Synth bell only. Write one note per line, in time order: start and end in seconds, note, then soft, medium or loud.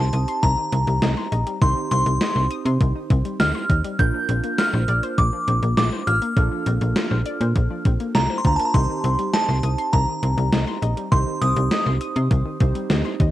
0.00 0.39 A5 loud
0.43 1.58 A#5 loud
1.62 1.89 C6 loud
1.92 2.47 C6 medium
3.40 4.01 F6 loud
3.99 4.60 G6 loud
4.59 5.14 F6 loud
5.18 5.73 D6 medium
5.77 6.05 D6 medium
6.07 7.81 F6 medium
8.15 8.39 A#5 medium
8.38 8.47 C6 medium
8.47 8.56 A#5 medium
8.56 8.65 A5 medium
8.65 8.74 A#5 medium
8.74 9.35 C6 medium
9.33 9.95 A5 medium
9.93 11.15 A#5 medium
11.12 11.42 C6 loud
11.42 11.97 D#6 medium